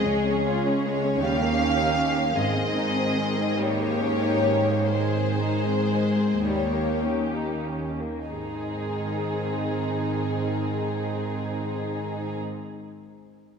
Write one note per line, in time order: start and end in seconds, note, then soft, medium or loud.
0.00 1.19 G#3 soft
0.00 1.24 G#4 soft
0.07 1.23 C#2 soft
0.07 0.26 G#3 soft
0.07 2.33 C#4 soft
0.07 0.82 C#5 medium
0.28 0.47 C#4 soft
0.47 0.66 F4 soft
0.67 0.86 C#4 soft
0.83 1.05 G#3 soft
0.83 1.21 C#5 medium
1.05 1.23 C#4 soft
1.22 2.36 D#2 soft
1.22 6.47 D#3 soft
1.22 1.40 G3 soft
1.22 2.34 G4 soft
1.22 2.37 F5 medium
1.42 1.61 A#3 soft
1.61 1.80 C#4 soft
1.78 1.98 D#4 soft
1.97 2.16 C#4 soft
2.16 2.36 A#3 soft
2.34 6.47 G#2 soft
2.34 2.54 G#3 soft
2.34 3.58 C4 soft
2.34 3.59 G#4 soft
2.34 3.61 D#5 medium
2.54 2.75 C4 soft
2.75 2.96 D#4 soft
2.95 3.17 C4 soft
3.17 3.38 G#3 soft
3.38 3.59 C4 soft
3.57 3.79 G3 soft
3.57 4.94 A#3 soft
3.57 4.93 G4 soft
3.57 4.95 C#5 medium
3.79 4.02 A#3 soft
4.01 4.24 C#4 soft
4.22 4.47 D#4 soft
4.46 4.70 C#4 soft
4.70 4.94 A#3 soft
4.92 5.15 G#3 soft
4.92 6.47 G#3 soft
4.92 6.44 G#4 soft
4.92 6.44 C5 medium
5.16 5.42 C4 soft
5.40 5.66 D#4 soft
5.65 5.92 C4 soft
5.90 6.19 G#3 soft
6.16 6.45 C4 soft
6.45 7.95 D#2 soft
6.45 7.96 D#3 soft
6.45 6.73 G3 soft
6.45 7.99 A#3 soft
6.45 7.97 G4 soft
6.45 7.03 C#5 soft
6.73 7.04 A#3 soft
7.03 7.35 C#4 soft
7.35 7.68 D#4 soft
7.68 8.00 C#4 soft
7.99 8.30 A#3 soft
8.27 12.42 G#2 soft
8.27 12.42 D#3 soft
8.27 12.42 C4 soft
8.27 12.40 D#4 soft
8.27 12.39 G#4 soft
8.27 12.40 G#4 soft